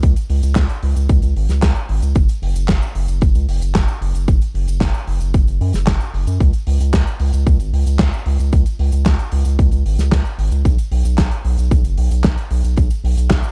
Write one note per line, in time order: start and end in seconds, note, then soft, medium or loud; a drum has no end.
0.03 0.15 C#2 loud
0.03 kick loud
0.03 closed hi-hat medium
0.03 cabasa medium
0.16 closed hi-hat medium
0.16 cabasa medium
0.30 0.42 C#2 loud
0.30 open hi-hat medium
0.43 0.55 C#2 medium
0.43 closed hi-hat medium
0.43 cabasa medium
0.55 0.68 C#2 loud
0.55 kick loud
0.55 snare loud
0.55 clap loud
0.55 closed hi-hat medium
0.55 cabasa medium
0.69 closed hi-hat medium
0.69 cabasa soft
0.83 0.95 C#2 medium
0.83 open hi-hat loud
0.96 1.08 C#2 medium
0.96 closed hi-hat medium
0.96 cabasa medium
1.09 1.21 C#2 loud
1.09 kick loud
1.09 closed hi-hat medium
1.09 cabasa medium
1.22 1.35 C#2 medium
1.22 closed hi-hat medium
1.22 cabasa soft
1.36 1.48 G#1 loud
1.36 open hi-hat loud
1.49 1.61 C#2 medium
1.49 snare soft
1.49 closed hi-hat medium
1.49 cabasa medium
1.62 1.74 C#2 loud
1.62 kick loud
1.62 snare loud
1.62 clap loud
1.62 closed hi-hat medium
1.62 cabasa medium
1.75 closed hi-hat medium
1.75 cabasa soft
1.89 2.01 G#1 loud
1.89 open hi-hat loud
2.02 2.14 C#2 medium
2.02 closed hi-hat medium
2.02 cabasa medium
2.15 2.27 F#1 loud
2.15 kick loud
2.15 closed hi-hat medium
2.15 cabasa medium
2.29 closed hi-hat medium
2.29 cabasa medium
2.42 2.54 F#1 loud
2.42 open hi-hat loud
2.55 2.67 F#1 medium
2.55 closed hi-hat medium
2.55 cabasa medium
2.68 2.81 F#1 loud
2.68 kick loud
2.68 snare loud
2.68 clap loud
2.68 closed hi-hat medium
2.68 cabasa medium
2.81 closed hi-hat medium
2.81 cabasa medium
2.95 3.07 F#1 loud
2.95 open hi-hat loud
3.08 3.20 F#1 medium
3.08 closed hi-hat medium
3.08 cabasa medium
3.21 3.34 F#1 loud
3.21 kick loud
3.21 closed hi-hat medium
3.21 cabasa medium
3.35 3.47 C#2 medium
3.35 closed hi-hat soft
3.35 cabasa soft
3.48 3.60 F#1 loud
3.48 open hi-hat loud
3.62 3.73 F#1 medium
3.62 closed hi-hat medium
3.62 cabasa medium
3.75 3.87 F#1 loud
3.75 kick loud
3.75 snare loud
3.75 clap loud
3.75 closed hi-hat medium
3.75 cabasa medium
3.88 closed hi-hat medium
3.88 cabasa soft
4.01 4.13 F#1 loud
4.01 open hi-hat loud
4.15 4.27 F#1 medium
4.15 closed hi-hat medium
4.15 cabasa medium
4.28 4.40 F#1 loud
4.28 kick loud
4.28 closed hi-hat medium
4.28 cabasa medium
4.41 closed hi-hat medium
4.41 cabasa soft
4.54 4.66 F#1 loud
4.54 open hi-hat medium
4.68 4.80 F#1 medium
4.68 closed hi-hat medium
4.68 cabasa medium
4.81 4.93 F#1 loud
4.81 kick loud
4.81 snare loud
4.81 clap loud
4.81 closed hi-hat medium
4.81 cabasa medium
4.94 closed hi-hat medium
4.94 cabasa soft
5.07 5.19 F#1 loud
5.07 open hi-hat loud
5.20 5.33 F#1 medium
5.20 closed hi-hat medium
5.20 cabasa medium
5.34 5.46 F#1 loud
5.34 kick loud
5.34 closed hi-hat medium
5.34 cabasa medium
5.47 5.59 F#1 medium
5.47 closed hi-hat soft
5.47 cabasa soft
5.61 5.73 F#2 loud
5.61 open hi-hat loud
5.73 5.86 F#1 medium
5.73 snare soft
5.73 closed hi-hat medium
5.73 cabasa medium
5.87 5.99 F#1 loud
5.87 kick loud
5.87 snare loud
5.87 clap loud
5.87 closed hi-hat medium
5.87 cabasa medium
6.00 closed hi-hat medium
6.00 cabasa soft
6.14 6.26 F#1 loud
6.14 open hi-hat loud
6.27 6.39 F#2 medium
6.27 closed hi-hat medium
6.27 cabasa medium
6.40 6.52 C#2 loud
6.40 kick loud
6.40 closed hi-hat medium
6.40 cabasa medium
6.53 closed hi-hat medium
6.53 cabasa medium
6.67 6.79 C#2 loud
6.67 open hi-hat loud
6.80 6.92 C#2 medium
6.80 closed hi-hat medium
6.80 cabasa medium
6.93 7.05 C#2 loud
6.93 kick loud
6.93 snare loud
6.93 clap loud
6.93 closed hi-hat medium
6.93 cabasa medium
7.07 closed hi-hat medium
7.07 cabasa medium
7.20 7.32 C#2 medium
7.20 open hi-hat loud
7.33 7.45 C#2 medium
7.33 closed hi-hat medium
7.33 cabasa medium
7.47 7.58 C#2 loud
7.47 kick loud
7.47 closed hi-hat medium
7.47 cabasa medium
7.60 7.72 G#1 medium
7.60 closed hi-hat medium
7.60 cabasa soft
7.73 7.85 C#2 medium
7.73 open hi-hat loud
7.86 7.98 C#2 medium
7.86 closed hi-hat medium
7.86 cabasa medium
7.99 8.12 C#2 loud
7.99 kick loud
7.99 snare loud
7.99 clap loud
7.99 closed hi-hat medium
7.99 cabasa medium
8.13 closed hi-hat medium
8.13 cabasa soft
8.26 8.38 C#2 loud
8.26 open hi-hat loud
8.39 8.51 C#2 medium
8.39 closed hi-hat medium
8.39 cabasa medium
8.52 8.65 C#2 loud
8.52 kick loud
8.52 closed hi-hat medium
8.52 cabasa medium
8.66 closed hi-hat medium
8.66 cabasa medium
8.79 8.91 C#2 medium
8.79 open hi-hat loud
8.92 9.04 C#2 medium
8.92 closed hi-hat medium
8.92 cabasa medium
9.06 9.18 C#2 loud
9.06 kick loud
9.06 snare loud
9.06 clap medium
9.06 closed hi-hat medium
9.06 cabasa medium
9.19 closed hi-hat medium
9.19 cabasa medium
9.32 9.44 C#2 loud
9.32 open hi-hat loud
9.45 9.58 C#2 medium
9.45 closed hi-hat medium
9.45 cabasa medium
9.59 9.71 C#2 loud
9.59 kick loud
9.59 closed hi-hat medium
9.59 cabasa medium
9.71 9.84 C#2 medium
9.71 closed hi-hat medium
9.71 cabasa soft
9.86 9.97 G#1 loud
9.86 open hi-hat loud
9.99 10.11 C#2 medium
9.99 snare soft
9.99 closed hi-hat medium
9.99 cabasa medium
10.12 10.24 C#2 loud
10.12 kick loud
10.12 snare loud
10.12 clap medium
10.12 closed hi-hat medium
10.12 cabasa medium
10.25 closed hi-hat medium
10.25 cabasa soft
10.38 10.50 G#1 loud
10.38 open hi-hat loud
10.52 10.64 C#2 medium
10.52 closed hi-hat medium
10.52 cabasa medium
10.65 10.77 B1 loud
10.65 kick loud
10.65 closed hi-hat medium
10.65 cabasa medium
10.78 closed hi-hat medium
10.78 cabasa medium
10.91 11.03 B1 loud
10.91 open hi-hat loud
11.05 11.17 B1 medium
11.05 closed hi-hat medium
11.05 cabasa medium
11.18 11.30 B1 loud
11.18 kick loud
11.18 snare loud
11.18 clap medium
11.18 closed hi-hat medium
11.18 cabasa medium
11.31 closed hi-hat medium
11.31 cabasa medium
11.45 11.57 B1 loud
11.45 open hi-hat loud
11.58 11.70 B1 medium
11.58 closed hi-hat medium
11.58 cabasa medium
11.71 11.83 B1 loud
11.71 kick loud
11.71 closed hi-hat medium
11.71 cabasa medium
11.84 11.96 F#1 medium
11.84 closed hi-hat medium
11.84 cabasa soft
11.97 12.10 B1 loud
11.97 open hi-hat loud
12.11 12.23 B1 medium
12.11 closed hi-hat medium
12.11 cabasa medium
12.24 12.36 B1 loud
12.24 kick loud
12.24 snare loud
12.24 clap loud
12.24 closed hi-hat medium
12.24 cabasa medium
12.37 closed hi-hat medium
12.37 cabasa soft
12.51 12.63 B1 loud
12.51 open hi-hat loud
12.64 12.76 B1 medium
12.64 closed hi-hat medium
12.64 cabasa medium
12.77 12.89 B1 loud
12.77 kick loud
12.77 closed hi-hat medium
12.77 cabasa medium
12.90 closed hi-hat medium
12.90 cabasa medium
13.04 13.16 B1 medium
13.04 open hi-hat loud
13.17 13.29 B1 medium
13.17 closed hi-hat medium
13.17 cabasa medium
13.30 13.42 B1 loud
13.30 kick loud
13.30 snare loud
13.30 clap medium
13.30 closed hi-hat medium
13.30 cabasa medium
13.42 closed hi-hat medium
13.42 cabasa medium